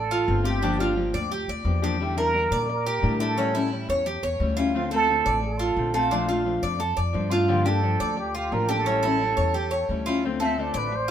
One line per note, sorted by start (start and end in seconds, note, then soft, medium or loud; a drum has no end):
0.00 0.25 A1 medium
0.00 0.43 A4 medium
0.00 0.10 D5 medium
0.11 0.45 F4 medium
0.27 1.08 G1 medium
0.27 0.44 D3 soft
0.27 0.45 A3 soft
0.27 0.44 C4 soft
0.27 0.43 F4 soft
0.44 0.62 A3 medium
0.44 0.62 C4 medium
0.44 0.61 F4 medium
0.44 0.62 G4 medium
0.44 0.95 G4 medium
0.61 0.79 D3 medium
0.61 0.79 F3 medium
0.61 0.79 A#3 medium
0.61 0.79 D4 medium
0.61 0.78 D4 medium
0.61 0.78 G4 medium
0.79 0.95 F3 medium
0.79 0.95 A#3 medium
0.79 0.96 D4 medium
0.79 1.13 F4 medium
0.79 0.96 G4 medium
0.96 1.30 F3 soft
0.96 1.30 A#3 medium
0.96 1.31 D4 medium
0.96 1.31 G4 medium
1.13 1.46 D2 medium
1.13 1.31 D5 medium
1.31 1.48 G4 medium
1.31 muted nylon-string guitar stroke medium
1.48 1.64 D2 medium
1.48 1.82 D5 medium
1.65 2.45 E2 medium
1.65 1.82 F3 soft
1.65 1.82 A#3 soft
1.65 1.82 D4 soft
1.65 1.81 G4 soft
1.82 1.99 F3 medium
1.82 1.99 A#3 medium
1.82 1.99 D4 medium
1.82 1.99 G4 medium
1.82 2.17 G4 medium
1.99 2.16 D3 medium
1.99 2.17 G3 medium
1.99 2.17 D4 medium
1.99 2.16 E4 medium
1.99 2.18 G4 medium
2.17 2.33 G3 medium
2.17 2.33 D4 medium
2.17 2.33 E4 medium
2.17 2.51 A#4 medium
2.17 2.66 A#4 loud
2.33 2.67 D3 soft
2.33 2.68 G3 medium
2.33 2.68 D4 medium
2.33 2.68 E4 medium
2.51 2.99 A#2 medium
2.51 2.85 D5 medium
2.68 3.23 A#4 medium
2.68 muted nylon-string guitar stroke medium
2.87 3.19 G4 medium
3.02 3.83 A2 medium
3.02 3.19 D3 soft
3.02 3.19 G3 soft
3.02 3.19 D4 soft
3.02 3.19 E4 medium
3.20 3.37 G3 medium
3.20 3.37 D4 medium
3.20 3.37 E4 medium
3.20 3.37 G4 medium
3.20 3.72 A4 medium
3.37 3.54 E3 medium
3.37 3.54 G3 medium
3.37 3.54 C#4 medium
3.37 3.53 E4 medium
3.54 3.71 G3 medium
3.54 3.71 C#4 medium
3.54 3.71 E4 medium
3.54 3.88 E4 medium
3.71 4.04 E3 soft
3.71 4.05 G3 soft
3.71 4.05 C#4 soft
3.71 4.05 E4 medium
3.89 4.21 E2 medium
3.89 4.06 C#5 medium
4.05 4.23 G4 medium
4.05 muted nylon-string guitar stroke medium
4.23 4.39 E2 medium
4.23 4.56 C#5 medium
4.40 5.20 D2 medium
4.40 4.57 E3 soft
4.40 4.57 G3 soft
4.40 4.57 C#4 soft
4.40 4.57 E4 medium
4.57 4.74 G3 medium
4.57 4.75 C#4 medium
4.57 4.74 E4 medium
4.57 4.90 F4 medium
4.74 4.91 D3 medium
4.74 4.91 A3 medium
4.74 4.92 C4 medium
4.74 4.90 F4 medium
4.74 4.84 F4 medium
4.91 5.08 A3 soft
4.91 5.09 C4 medium
4.91 5.08 F4 medium
4.91 5.25 A4 medium
4.91 5.41 A4 loud
5.08 5.42 D3 soft
5.08 5.42 A3 soft
5.08 5.43 C4 medium
5.08 5.43 F4 medium
5.26 5.74 A1 medium
5.26 5.59 D5 medium
5.43 6.00 A4 medium
5.43 muted nylon-string guitar stroke medium
5.59 5.93 F4 medium
5.76 6.57 A#1 medium
5.76 5.94 D3 soft
5.76 5.94 A3 soft
5.76 5.94 C4 soft
5.76 5.93 F4 soft
5.94 6.10 A3 medium
5.94 6.11 C4 medium
5.94 6.11 F4 medium
5.94 6.11 A4 medium
5.99 6.48 F4 medium
6.11 6.28 F3 medium
6.11 6.28 A3 medium
6.11 6.28 D4 medium
6.11 6.27 F4 medium
6.28 6.45 A3 medium
6.28 6.45 D4 medium
6.28 6.45 F4 medium
6.28 6.62 F4 medium
6.45 6.78 F3 soft
6.45 6.78 A3 soft
6.45 6.78 D4 medium
6.45 6.78 F4 medium
6.63 6.95 F2 medium
6.63 6.80 D5 medium
6.79 6.97 A4 medium
6.79 muted nylon-string guitar stroke medium
6.97 7.13 F2 medium
6.97 7.31 D5 medium
7.13 7.95 G2 medium
7.13 7.30 F3 medium
7.13 7.31 A3 soft
7.13 7.30 D4 soft
7.13 7.29 F4 medium
7.30 7.48 A3 medium
7.30 7.48 D4 medium
7.30 7.48 F4 medium
7.30 7.65 F4 medium
7.48 7.65 D3 medium
7.48 7.65 F3 medium
7.48 7.65 A#3 medium
7.48 7.65 D4 medium
7.48 7.69 F4 medium
7.48 7.64 G4 medium
7.65 7.80 F3 soft
7.65 7.81 A#3 medium
7.65 7.82 D4 medium
7.65 7.82 G4 medium
7.65 7.99 G4 medium
7.65 8.18 A4 loud
7.82 8.16 F3 medium
7.82 8.16 A#3 medium
7.82 8.16 D4 medium
7.82 8.16 G4 medium
8.00 8.48 D2 medium
8.00 8.34 D5 medium
8.17 8.34 G4 medium
8.17 muted nylon-string guitar stroke medium
8.35 8.68 F4 medium
8.35 8.54 G4 medium
8.51 9.32 A1 medium
8.51 8.68 F3 soft
8.51 8.69 A#3 soft
8.51 8.69 D4 soft
8.51 8.68 G4 medium
8.51 8.71 A#4 loud
8.69 8.86 F3 medium
8.69 8.86 A#3 medium
8.69 8.86 D4 medium
8.69 8.86 G4 medium
8.69 10.07 A4 loud
8.86 9.03 E3 medium
8.86 9.03 G3 medium
8.86 9.03 C#4 medium
8.86 9.03 E4 medium
9.03 9.20 G3 medium
9.03 9.21 C#4 medium
9.03 9.36 E4 medium
9.03 9.21 E4 medium
9.21 9.54 E3 soft
9.21 9.54 G3 medium
9.21 9.55 C#4 soft
9.21 9.55 E4 medium
9.37 9.85 E2 medium
9.37 9.54 C#5 medium
9.54 9.71 G4 medium
9.54 muted nylon-string guitar stroke medium
9.71 10.05 C#5 medium
9.89 10.69 D2 medium
9.89 10.06 E3 soft
9.89 10.06 G3 soft
9.89 10.07 C#4 soft
9.89 10.06 E4 soft
10.06 10.24 G3 medium
10.06 10.24 C#4 medium
10.06 10.23 E4 medium
10.06 10.23 F4 medium
10.24 10.40 D3 medium
10.24 10.41 A3 medium
10.24 10.41 C4 medium
10.24 10.40 F4 medium
10.40 10.57 A3 medium
10.40 10.58 C4 medium
10.40 10.57 F4 medium
10.40 10.74 A4 medium
10.40 10.63 E5 medium
10.58 10.90 D3 soft
10.58 10.90 A3 soft
10.58 10.91 C4 medium
10.58 10.91 F4 medium
10.58 10.78 D5 medium
10.74 11.11 A1 medium
10.74 10.97 B4 medium
10.74 11.08 D5 medium
10.91 muted nylon-string guitar stroke medium
10.95 11.11 C5 medium